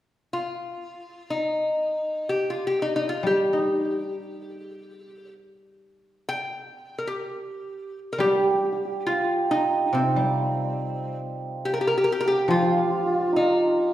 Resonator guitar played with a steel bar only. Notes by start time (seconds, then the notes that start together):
0.33 F4
1.30 D#4
2.29 G4
2.50 F4
2.67 G4
2.82 D#4
2.96 D#4
3.09 F4
3.27 G4
6.29 G5
6.98 A#4
7.07 G4
8.13 A#4
8.20 G4
9.06 F4
9.51 D#4
9.94 C4
11.65 G4
11.74 A#4
11.81 G4
11.87 A#4
11.98 G4
12.04 A#4
12.12 G4
12.20 A#4
12.28 G4
12.50 F4
13.36 D#4